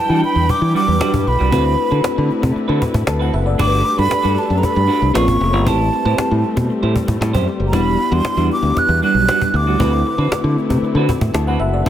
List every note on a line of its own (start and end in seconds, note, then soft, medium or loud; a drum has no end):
0.00 1.50 E3 medium
0.00 1.49 F#3 medium
0.00 1.48 G3 medium
0.00 1.48 D4 medium
0.00 1.50 D4 medium
0.00 1.49 E4 medium
0.00 1.49 B4 medium
0.00 3.55 B4 medium
0.00 1.50 G5 medium
0.00 0.24 A5 loud
0.10 0.21 E3 medium
0.10 0.22 G3 medium
0.10 0.23 D4 medium
0.10 0.23 F#4 medium
0.23 0.52 B5 loud
0.23 muted clean electric guitar stroke soft
0.23 cajon slap soft
0.36 0.47 E2 medium
0.36 muted clean electric guitar stroke soft
0.49 0.75 D6 loud
0.49 muted clean electric guitar stroke soft
0.49 muted fingered electric bass stroke soft
0.49 cajon bass medium
0.49 cajon slap soft
0.62 0.73 E3 loud
0.62 muted clean electric guitar stroke soft
0.74 0.95 G3 medium
0.74 0.87 D4 medium
0.74 0.86 F#4 medium
0.74 1.29 D6 loud
0.74 cajon slap soft
0.87 0.99 E2 medium
0.87 muted clean electric guitar stroke medium
1.00 1.21 G3 medium
1.00 1.13 D4 medium
1.00 1.12 F#4 loud
1.00 cajon slap loud
1.13 1.25 G2 medium
1.13 muted clean electric guitar stroke soft
1.13 cajon bass medium
1.13 cajon slap soft
1.26 1.38 B1 medium
1.26 2.31 B5 medium
1.26 muted clean electric guitar stroke soft
1.39 1.51 C2 medium
1.39 1.56 G3 medium
1.39 1.51 D4 medium
1.39 1.51 F#4 medium
1.51 1.74 D2 loud
1.51 3.57 D3 medium
1.51 3.55 A3 medium
1.51 3.57 A3 medium
1.51 3.55 C4 medium
1.51 1.73 C4 medium
1.51 3.57 C4 medium
1.51 3.57 E4 medium
1.51 3.55 E4 medium
1.51 1.65 F#4 medium
1.51 3.56 F#4 medium
1.51 1.64 B4 loud
1.51 3.56 B4 medium
1.51 cajon bass loud
1.65 muted clean electric guitar stroke soft
1.77 muted clean electric guitar stroke soft
1.77 cajon slap soft
1.91 2.02 D3 medium
1.91 2.03 C4 medium
1.91 2.03 F#4 medium
1.91 2.03 B4 medium
2.04 muted clean electric guitar stroke soft
2.04 muted fingered electric bass stroke soft
2.04 cajon slap loud
2.16 2.29 D3 medium
2.16 muted clean electric guitar stroke soft
2.31 cajon slap soft
2.42 2.54 C3 medium
2.42 muted clean electric guitar stroke soft
2.42 cajon bass medium
2.55 muted clean electric guitar stroke soft
2.55 muted fingered electric bass stroke soft
2.55 cajon slap soft
2.68 2.80 D3 medium
2.68 2.80 C4 medium
2.68 2.80 F#4 medium
2.68 2.81 B4 medium
2.81 muted clean electric guitar stroke soft
2.81 cajon bass medium
2.81 cajon slap soft
2.94 3.05 A2 loud
2.94 muted clean electric guitar stroke soft
2.94 cajon bass medium
3.07 3.29 D2 medium
3.07 3.20 A5 medium
3.07 muted clean electric guitar stroke soft
3.07 cajon slap loud
3.20 3.32 C4 medium
3.20 3.32 F#4 medium
3.20 3.33 B4 medium
3.20 3.34 F#5 medium
3.20 cajon slap soft
3.33 3.55 F#1 medium
3.33 3.46 E5 medium
3.33 muted clean electric guitar stroke soft
3.46 3.71 D5 medium
3.46 muted clean electric guitar stroke medium
3.58 3.81 G1 medium
3.58 5.13 G3 medium
3.58 5.11 A3 medium
3.58 3.83 D4 medium
3.58 5.11 D4 medium
3.58 5.13 D4 medium
3.58 3.83 F#4 loud
3.58 5.12 F#4 medium
3.58 5.12 G4 medium
3.58 5.13 A4 medium
3.58 3.66 A4 medium
3.58 5.13 B4 medium
3.58 3.83 B4 loud
3.58 4.00 D6 loud
3.58 cajon bass loud
3.67 5.14 B4 medium
3.84 muted clean electric guitar stroke soft
3.84 cajon slap soft
3.97 4.09 G2 loud
3.97 4.09 D4 medium
3.97 4.10 F#4 medium
3.97 4.10 B4 medium
3.97 4.40 B5 loud
4.11 muted clean electric guitar stroke soft
4.11 muted fingered electric bass stroke soft
4.11 cajon slap loud
4.23 4.35 G2 medium
4.23 4.36 D4 medium
4.23 4.36 F#4 medium
4.23 4.36 B4 medium
4.37 4.59 A5 medium
4.37 muted clean electric guitar stroke soft
4.37 cajon slap soft
4.49 4.61 F#2 medium
4.49 muted clean electric guitar stroke soft
4.58 4.66 A#5 medium
4.62 5.15 B5 loud
4.62 muted clean electric guitar stroke soft
4.62 muted fingered electric bass stroke soft
4.62 cajon bass medium
4.62 cajon slap soft
4.75 4.87 G2 medium
4.75 muted clean electric guitar stroke medium
4.88 5.09 D4 medium
4.88 5.01 F#4 medium
4.88 5.00 B4 loud
4.88 cajon slap soft
5.01 5.13 C2 medium
5.01 muted clean electric guitar stroke soft
5.14 5.26 A#1 loud
5.14 5.66 C#3 medium
5.14 5.66 G#3 medium
5.14 5.66 A#3 medium
5.14 5.66 C#4 medium
5.14 5.35 F4 medium
5.14 5.66 F4 medium
5.14 5.27 G#4 medium
5.14 5.66 G#4 medium
5.14 5.21 B4 medium
5.14 5.26 C#5 medium
5.14 5.69 C#6 loud
5.14 cajon slap loud
5.21 5.64 C4 medium
5.27 5.39 G#1 medium
5.27 muted clean electric guitar stroke soft
5.27 cajon bass loud
5.27 cajon slap soft
5.41 5.53 F1 medium
5.41 muted clean electric guitar stroke medium
5.53 5.64 G1 medium
5.53 5.66 F4 medium
5.53 5.67 G#4 medium
5.53 5.67 C#5 medium
5.65 5.88 A1 loud
5.65 9.77 G3 medium
5.65 7.69 A3 medium
5.65 7.72 A3 medium
5.65 7.69 C4 medium
5.65 7.72 C4 medium
5.65 5.87 E4 medium
5.65 7.69 E4 medium
5.65 7.69 G4 medium
5.65 5.79 G4 medium
5.65 7.70 B4 medium
5.65 5.78 C5 medium
5.65 6.71 A5 medium
5.65 cajon bass loud
5.79 muted clean electric guitar stroke soft
5.92 muted clean electric guitar stroke soft
5.92 cajon slap soft
6.05 6.16 A2 loud
6.05 6.17 E4 medium
6.05 6.18 G4 medium
6.05 6.18 C5 medium
6.18 muted fingered electric bass stroke soft
6.18 muted clean electric guitar stroke soft
6.18 cajon slap loud
6.31 6.42 A2 medium
6.31 muted clean electric guitar stroke soft
6.44 cajon slap soft
6.56 6.68 B2 medium
6.56 muted clean electric guitar stroke medium
6.56 cajon bass medium
6.70 muted clean electric guitar stroke soft
6.70 cajon slap soft
6.83 6.94 A2 medium
6.83 6.94 E4 medium
6.83 6.94 G4 medium
6.83 6.94 C5 medium
6.95 muted clean electric guitar stroke soft
6.95 cajon bass medium
7.08 7.19 A2 loud
7.08 muted clean electric guitar stroke soft
7.08 cajon bass medium
7.21 7.32 A2 loud
7.21 muted clean electric guitar stroke soft
7.21 cajon slap loud
7.33 7.45 F#2 medium
7.33 7.46 E4 medium
7.33 7.46 G4 medium
7.33 7.47 C5 medium
7.33 cajon bass loud
7.47 muted clean electric guitar stroke soft
7.47 cajon slap soft
7.60 7.73 F#1 medium
7.60 muted clean electric guitar stroke soft
7.67 7.76 A#5 medium
7.72 7.95 E1 loud
7.72 9.78 E3 medium
7.72 7.97 G3 medium
7.72 9.76 G3 medium
7.72 9.77 B3 medium
7.72 7.97 D4 medium
7.72 9.76 D4 medium
7.72 9.78 D4 medium
7.72 9.76 E4 medium
7.72 7.97 F#4 medium
7.72 9.77 F#4 medium
7.72 8.15 B5 medium
7.72 cajon bass loud
7.98 muted clean electric guitar stroke soft
7.98 cajon slap soft
8.11 8.23 E2 loud
8.11 8.23 G3 medium
8.11 8.24 D4 medium
8.11 8.24 F#4 medium
8.11 8.51 C6 loud
8.25 muted fingered electric bass stroke soft
8.25 cajon slap loud
8.37 8.48 E2 loud
8.37 8.50 G3 medium
8.37 8.50 D4 medium
8.37 8.50 F#4 medium
8.51 8.80 D6 loud
8.51 muted clean electric guitar stroke soft
8.51 cajon slap soft
8.63 8.74 D2 medium
8.63 muted clean electric guitar stroke soft
8.76 9.03 F#6 loud
8.76 muted clean electric guitar stroke soft
8.76 muted fingered electric bass stroke medium
8.76 cajon bass medium
8.76 cajon slap medium
8.89 9.00 E2 loud
8.89 muted clean electric guitar stroke soft
9.02 9.23 G3 medium
9.02 9.15 D4 medium
9.02 9.14 F#4 medium
9.02 9.58 F#6 loud
9.02 cajon slap soft
9.14 9.26 B1 medium
9.14 muted clean electric guitar stroke medium
9.28 9.49 G3 medium
9.28 9.41 D4 medium
9.28 9.40 F#4 medium
9.28 cajon slap loud
9.41 muted clean electric guitar stroke soft
9.41 cajon bass loud
9.41 cajon slap soft
9.54 9.76 D2 medium
9.54 10.58 D6 medium
9.54 muted clean electric guitar stroke soft
9.67 9.84 G3 medium
9.67 9.79 D4 medium
9.67 9.79 F#4 medium
9.79 10.02 D2 medium
9.79 11.84 D3 medium
9.79 11.82 A3 medium
9.79 11.85 A3 medium
9.79 11.82 C4 medium
9.79 10.00 C4 medium
9.79 11.85 C4 medium
9.79 11.83 E4 medium
9.79 11.85 E4 medium
9.79 9.92 F#4 medium
9.79 11.83 F#4 medium
9.79 9.91 B4 medium
9.79 11.83 B4 medium
9.79 cajon bass loud
9.92 muted clean electric guitar stroke soft
10.06 muted clean electric guitar stroke soft
10.06 cajon slap soft
10.18 10.29 D3 medium
10.18 10.30 C4 medium
10.18 10.31 F#4 medium
10.18 10.31 B4 medium
10.31 muted clean electric guitar stroke soft
10.31 muted fingered electric bass stroke soft
10.31 cajon slap loud
10.44 10.55 D3 loud
10.44 muted clean electric guitar stroke soft
10.58 cajon slap soft
10.70 10.81 C3 medium
10.70 muted clean electric guitar stroke soft
10.70 cajon bass medium
10.82 muted fingered electric bass stroke soft
10.82 muted clean electric guitar stroke soft
10.82 cajon slap soft
10.95 11.06 D3 loud
10.95 11.08 C4 medium
10.95 11.09 F#4 medium
10.95 11.09 B4 medium
11.09 muted clean electric guitar stroke soft
11.09 cajon bass medium
11.09 cajon slap soft
11.21 11.33 A2 loud
11.21 muted clean electric guitar stroke soft
11.21 cajon bass medium
11.34 11.56 D2 loud
11.34 11.47 A5 medium
11.34 muted clean electric guitar stroke soft
11.34 cajon slap loud
11.47 11.60 C4 medium
11.47 11.60 F#4 medium
11.47 11.60 B4 medium
11.47 11.60 F#5 medium
11.47 cajon slap soft
11.59 11.82 F#1 medium
11.59 11.73 E5 medium
11.59 muted clean electric guitar stroke soft
11.73 11.89 D5 medium
11.73 muted clean electric guitar stroke soft
11.85 11.89 G3 medium
11.85 11.89 A3 medium
11.85 11.89 D4 medium
11.85 11.89 A4 medium
11.85 11.89 B4 medium